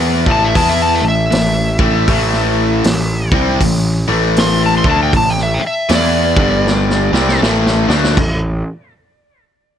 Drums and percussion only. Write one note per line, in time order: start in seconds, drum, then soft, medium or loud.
0.26 kick loud
0.55 kick loud
0.55 open hi-hat medium
1.32 snare loud
1.32 open hi-hat medium
1.79 kick loud
2.08 kick loud
2.08 open hi-hat medium
2.33 snare soft
2.84 snare loud
2.84 open hi-hat medium
3.32 kick loud
3.60 kick medium
3.60 open hi-hat medium
4.36 snare loud
4.36 open hi-hat medium
4.84 kick loud
5.13 kick medium
5.13 open hi-hat medium
5.38 snare soft
5.89 snare loud
5.89 open hi-hat medium
6.37 kick loud
6.67 snare medium
6.90 snare medium
7.14 snare medium
7.29 snare medium
7.43 snare medium
7.66 snare medium
7.90 snare loud
8.04 snare medium
8.17 kick loud
8.17 floor tom loud
8.17 crash medium